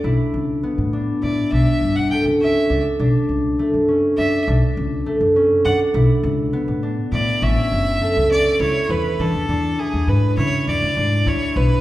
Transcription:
<<
  \new Staff \with { instrumentName = "Violin" } { \time 5/8 \key e \dorian \tempo 4 = 102 r2 d''8 | e''8. fis''16 g''8 e''8. r16 | r2 e''8 | r2 fis''8 |
r2 d''8 | e''4. d''8 cis''8 | b'8 a'4 gis'8 b'8 | cis''8 d''4 cis''8 b'8 | }
  \new Staff \with { instrumentName = "Harp" } { \time 5/8 \key e \dorian e'4 b8 d'8 e'8 | d'4 a8 cis'8 d'8 | d'4 a8 cis'8 d'8 | d'4 a8 cis'8 d'8 |
e'4 b8 d'8 e'8 | cis'4 a8 cis'8 e'8 | e'8 d'8 d'8 e'4 | e'8 d'8 d'8 e'4 | }
  \new Staff \with { instrumentName = "Upright bass" } { \clef bass \time 5/8 \key e \dorian b,,16 r16 cis,8 r16 a,8 r16 a,16 r16 | b,,16 r16 g,,8 r16 cis,8 r16 cis,16 r16 | b,,16 r16 cis,8 r16 fis,8 r16 fis,16 r16 | b,,16 r16 cis,8 r16 fis,8 r16 fis,16 r16 |
b,,16 r16 cis,8 r16 a,8 r16 a,16 r16 | a,,16 r16 fis,,8 r16 cis,8 r16 cis,16 r16 | e,8 e16 e,16 e,8 r16 e,16 gis,8 | cis8 e,16 d,16 gis,8 d,8 b,,16 r16 | }
>>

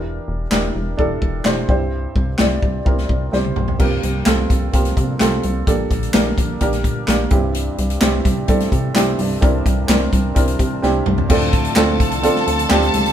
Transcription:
<<
  \new Staff \with { instrumentName = "Violin section" } { \time 4/4 \key c \mixolydian \tempo 4 = 128 r1 | r1 | r1 | r1 |
r1 | r1 | <a' a''>1 | }
  \new Staff \with { instrumentName = "Upright piano" } { \time 4/4 \key c \mixolydian <d' e' g' bes'>4 <d' e' g' bes'>4 <d' e' g' a'>4 <d' e' g' c''>8 <c' e' g' c''>8~ | <c' e' g' c''>4 <c' e' g' d''>4 <c' e' g' bes'>4 <c' e' g' c''>4 | <c' f' g' bes'>4 <c' f' g' a'>4 <c' f' g' bes'>4 <c' f' g' a'>4 | <bes d' g' a'>4 <bes d' g' bes'>4 <bes d' g' bes'>4 <bes d' g' bes'>8 <c' d' e' g'>8~ |
<c' d' e' g'>4 <c' d' e' g'>4 <c' d' e' a'>4 <c' d' e' g'>4 | <c' d' e' bes'>4 <c' d' e' bes'>4 <c' d' e' bes'>4 <c' d' e' g'>4 | <c' d' f' a'>4 <c' d' f' a'>4 <c' d' f' a'>4 <c' d' f' g'>4 | }
  \new Staff \with { instrumentName = "Upright piano" } { \clef bass \time 4/4 \key c \mixolydian e4 r2 r8 g,8~ | g,4 r2. | g,4. r2 r8 | bes,4. r2 g,8~ |
g,4 r2 r8 g,8~ | g,4 r2. | a,4. r2 r8 | }
  \new Staff \with { instrumentName = "Tonewheel organ" } { \time 4/4 \key c \mixolydian r1 | r1 | g'1~ | g'1~ |
g'2.~ g'8 a''8~ | a''1 | f'1 | }
  \new Staff \with { instrumentName = "Tonewheel organ" } { \clef bass \time 4/4 \key c \mixolydian << { r1 | r1 | <f bes c'>1 | <d bes>2.~ <d bes>8 <e c' d'>8~ |
<e c' d'>1~ | <e c' d'>1 | <d a c'>1 | } \\ { r1 | r1 | g1 | g1~ |
g1~ | g1 | f1 | } >> }
  \new Staff \with { instrumentName = "Analog synth bass" } { \clef bass \time 4/4 \key c \mixolydian e,,8 e,,8 e,,8 e,,8 e,,8 e,,8 e,,8 c,8~ | c,8 c,8 c,8 c,8 c,8 c,8 c,8 b,,8 | c,8 c,8 c,8 c,8 c,8 c8 c,8 c,8 | bes,,8 bes,,8 bes,,8 bes,,8 bes,,8 bes,8 bes,,8 c,8~ |
c,8 c,8 c,8 c,8 c,8 c8 c,8 c,8 | c,8 c,8 c,8 c,8 c,8 c8 c,8 c,8 | d,4 d,8 c,8. r16 d,8 d,8 cis,8 | }
  \new DrumStaff \with { instrumentName = "Drums" } \drummode { \time 4/4 r4 <hc sn>4 bd8 bd8 <hc sn>8 bd8 | r8 bd8 <hc sn>8 bd8 bd16 sn16 bd8 sn16 tommh16 toml16 tomfh16 | <cymc bd>8 hh8 <hc hh sn>8 <hh bd>8 <hh bd>16 <hh sn>16 <hh bd>8 <hc hh sn>8 hh8 | <hh bd>8 <hh bd>16 hh16 <hc hh sn>8 <hh bd>8 <hh bd>16 <hh sn>16 <hh bd>8 <hc hh sn>8 <hh bd>8 |
hh8 hh16 hh16 <hc hh sn>8 <hh bd>8 <hh bd>16 <hh sn>16 <hh bd>8 <hc hh sn>8 hho8 | <hh bd>8 <hh bd>8 <hc hh sn>8 <hh bd>8 <hh bd>16 hh16 <hh bd>8 sn8 toml16 tomfh16 | <cymc bd>16 hh16 <hh bd>16 hh16 <hc sn>8 <hh bd>16 hh16 hh16 sn16 hh16 hh16 <hc sn>16 hh16 hh16 hh16 | }
>>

